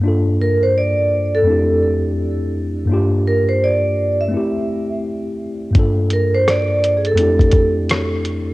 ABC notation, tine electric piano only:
X:1
M:4/4
L:1/8
Q:"Swing 16ths" 1/4=84
K:Gdor
V:1 name="Tine electric piano"
[G,,B,DFA]4 [F,,A,CDEG]4 | [G,,B,DFG]4 [A,CEG]4 | [G,,B,DFA]4 [F,,A,CDEG]4 |]